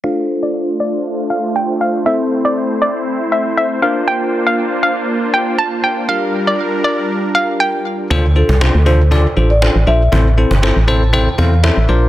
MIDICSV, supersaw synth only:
0, 0, Header, 1, 2, 480
1, 0, Start_track
1, 0, Key_signature, -1, "minor"
1, 0, Tempo, 504202
1, 41, Time_signature, 4, 2, 24, 8
1, 11508, End_track
2, 0, Start_track
2, 0, Title_t, "Supersaw synth"
2, 0, Program_c, 0, 81
2, 40, Note_on_c, 0, 57, 76
2, 40, Note_on_c, 0, 62, 69
2, 41, Note_on_c, 0, 65, 69
2, 41, Note_on_c, 0, 72, 84
2, 1941, Note_off_c, 0, 62, 0
2, 1942, Note_off_c, 0, 65, 0
2, 1962, Note_on_c, 0, 64, 71
2, 1963, Note_on_c, 0, 60, 73
2, 3605, Note_off_c, 0, 57, 0
2, 3625, Note_off_c, 0, 60, 0
2, 3625, Note_off_c, 0, 64, 0
2, 3642, Note_on_c, 0, 58, 76
2, 3642, Note_on_c, 0, 62, 71
2, 3643, Note_on_c, 0, 65, 70
2, 5763, Note_off_c, 0, 72, 0
2, 5780, Note_off_c, 0, 58, 0
2, 5780, Note_off_c, 0, 62, 0
2, 5801, Note_on_c, 0, 55, 76
2, 5801, Note_on_c, 0, 62, 73
2, 5801, Note_on_c, 0, 70, 90
2, 7684, Note_off_c, 0, 65, 0
2, 7702, Note_off_c, 0, 55, 0
2, 7702, Note_off_c, 0, 62, 0
2, 7702, Note_off_c, 0, 70, 0
2, 11508, End_track
0, 0, End_of_file